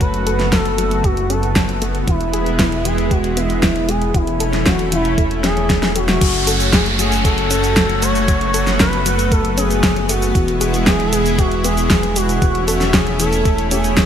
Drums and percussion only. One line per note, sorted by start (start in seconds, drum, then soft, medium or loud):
0.01 kick loud
0.01 closed hi-hat medium
0.14 closed hi-hat soft
0.27 closed hi-hat medium
0.40 snare soft
0.40 closed hi-hat soft
0.52 kick loud
0.52 snare loud
0.52 closed hi-hat medium
0.65 closed hi-hat soft
0.78 closed hi-hat medium
0.91 closed hi-hat soft
1.04 kick loud
1.04 closed hi-hat medium
1.17 closed hi-hat soft
1.30 closed hi-hat medium
1.43 closed hi-hat soft
1.56 kick loud
1.56 snare loud
1.56 closed hi-hat medium
1.69 closed hi-hat soft
1.82 closed hi-hat medium
1.95 closed hi-hat soft
2.08 kick loud
2.08 closed hi-hat medium
2.21 closed hi-hat soft
2.33 closed hi-hat medium
2.46 closed hi-hat soft
2.59 kick loud
2.59 snare loud
2.59 closed hi-hat medium
2.72 closed hi-hat soft
2.85 closed hi-hat medium
2.98 closed hi-hat soft
3.11 kick loud
3.11 closed hi-hat medium
3.24 closed hi-hat soft
3.37 closed hi-hat medium
3.50 closed hi-hat soft
3.63 kick loud
3.63 snare loud
3.63 closed hi-hat medium
3.76 closed hi-hat soft
3.89 closed hi-hat medium
4.02 closed hi-hat soft
4.14 kick loud
4.14 closed hi-hat medium
4.27 closed hi-hat soft
4.40 closed hi-hat medium
4.53 snare soft
4.53 closed hi-hat soft
4.66 kick loud
4.66 snare loud
4.66 closed hi-hat medium
4.79 closed hi-hat soft
4.92 closed hi-hat medium
5.05 closed hi-hat soft
5.18 kick loud
5.18 closed hi-hat medium
5.31 closed hi-hat soft
5.44 snare medium
5.44 closed hi-hat medium
5.57 closed hi-hat soft
5.70 kick loud
5.70 snare medium
5.70 closed hi-hat medium
5.83 snare medium
5.83 closed hi-hat soft
5.96 closed hi-hat medium
6.09 snare medium
6.09 closed hi-hat soft
6.21 kick loud
6.21 closed hi-hat medium
6.21 crash loud
6.21 cabasa soft
6.34 closed hi-hat soft
6.47 closed hi-hat loud
6.47 cabasa medium
6.60 closed hi-hat soft
6.60 cabasa soft
6.73 kick loud
6.73 snare loud
6.73 closed hi-hat medium
6.73 cabasa soft
6.86 closed hi-hat soft
6.99 closed hi-hat loud
6.99 cabasa medium
7.12 closed hi-hat soft
7.12 cabasa soft
7.25 kick loud
7.25 closed hi-hat medium
7.25 cabasa soft
7.38 closed hi-hat soft
7.51 closed hi-hat loud
7.51 cabasa medium
7.64 closed hi-hat soft
7.64 cabasa soft
7.77 kick loud
7.77 snare loud
7.77 closed hi-hat medium
7.77 cabasa soft
7.90 closed hi-hat soft
8.02 closed hi-hat loud
8.02 cabasa medium
8.15 closed hi-hat soft
8.15 cabasa soft
8.28 kick loud
8.28 closed hi-hat medium
8.28 cabasa soft
8.41 closed hi-hat soft
8.54 closed hi-hat loud
8.54 cabasa medium
8.67 snare soft
8.67 closed hi-hat soft
8.67 cabasa soft
8.80 kick loud
8.80 snare loud
8.80 closed hi-hat medium
8.80 cabasa soft
8.93 closed hi-hat soft
9.06 closed hi-hat loud
9.06 cabasa medium
9.19 closed hi-hat soft
9.19 cabasa soft
9.32 kick loud
9.32 closed hi-hat medium
9.32 cabasa soft
9.45 closed hi-hat soft
9.58 closed hi-hat loud
9.58 cabasa medium
9.71 closed hi-hat soft
9.71 cabasa soft
9.83 kick loud
9.83 snare loud
9.83 closed hi-hat medium
9.83 cabasa soft
9.96 closed hi-hat soft
10.09 closed hi-hat loud
10.09 cabasa medium
10.22 closed hi-hat soft
10.22 cabasa soft
10.35 kick loud
10.35 closed hi-hat medium
10.35 cabasa soft
10.48 closed hi-hat soft
10.61 closed hi-hat medium
10.61 cabasa medium
10.74 closed hi-hat soft
10.74 cabasa soft
10.87 kick loud
10.87 snare loud
10.87 closed hi-hat medium
10.87 cabasa soft
11.00 closed hi-hat soft
11.13 closed hi-hat loud
11.13 cabasa medium
11.26 closed hi-hat soft
11.26 cabasa soft
11.39 kick loud
11.39 closed hi-hat medium
11.39 cabasa soft
11.52 closed hi-hat soft
11.64 closed hi-hat medium
11.64 cabasa medium
11.77 closed hi-hat soft
11.77 cabasa soft
11.90 kick loud
11.90 snare loud
11.90 closed hi-hat medium
11.90 cabasa soft
12.03 closed hi-hat soft
12.16 closed hi-hat loud
12.16 cabasa medium
12.29 closed hi-hat soft
12.29 cabasa soft
12.42 kick loud
12.42 closed hi-hat medium
12.42 cabasa soft
12.55 closed hi-hat soft
12.68 closed hi-hat medium
12.68 cabasa medium
12.81 snare soft
12.81 closed hi-hat soft
12.81 cabasa soft
12.94 kick loud
12.94 snare loud
12.94 closed hi-hat medium
12.94 cabasa soft
13.07 closed hi-hat soft
13.20 closed hi-hat medium
13.20 cabasa medium
13.33 closed hi-hat soft
13.33 cabasa soft
13.45 kick loud
13.45 closed hi-hat medium
13.45 cabasa soft
13.58 closed hi-hat soft
13.71 closed hi-hat medium
13.71 cabasa medium
13.84 closed hi-hat soft
13.84 cabasa soft
13.97 kick loud
13.97 snare loud
13.97 closed hi-hat medium
13.97 cabasa soft